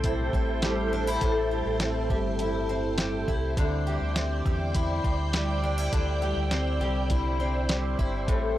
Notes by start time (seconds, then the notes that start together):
Already playing: B1 A2 G3 C4 E4 A4 C5 G5
0.04 E4, kick, closed hi-hat
0.33 A1 C4, kick
0.62 G3, snare, closed hi-hat
0.93 D4
1.07 E4
1.21 A1 A2, kick, closed hi-hat
1.51 G3
1.66 A1
1.80 C4, snare, closed hi-hat
2.10 G1 G3, kick
2.39 E4, closed hi-hat
2.69 C4
2.98 G3, snare, closed hi-hat
3.28 C2 E4, kick
3.57 D2 D3 E4 C5 D5 G5, kick, closed hi-hat
3.87 G3
4.01 D2
4.16 C4, snare, closed hi-hat
4.46 E2 G3, kick
4.75 E4, kick, closed hi-hat
5.04 D2 C4, kick
5.33 G3, snare, closed hi-hat
5.64 D4
5.78 E4
5.93 D2 D3, kick, closed hi-hat
6.22 G3
6.37 D2
6.51 C4, snare, closed hi-hat
6.80 C2 G3
7.10 E4, kick, closed hi-hat
7.40 C4
7.69 G3, snare, closed hi-hat
7.99 G1 E4, kick
8.28 A1 A2 A4 G5, kick, closed hi-hat